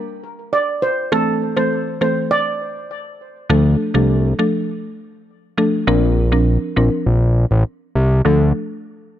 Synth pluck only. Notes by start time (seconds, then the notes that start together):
1.12 E3 A3 C4 A4
1.57 E3 A3 C4 A4
2.01 E3 A3 C4 A4
3.50 F3 A3 D4 A4
3.94 F3 A3 D4 A4
4.39 F3 A3 D4 A4
5.58 F3 A3 D4 A4
5.87 F3 C4 D4 A#4
6.32 F3 C4 D4 A#4
6.76 F3 C4 D4 A#4
8.25 F3 A3 D4 A4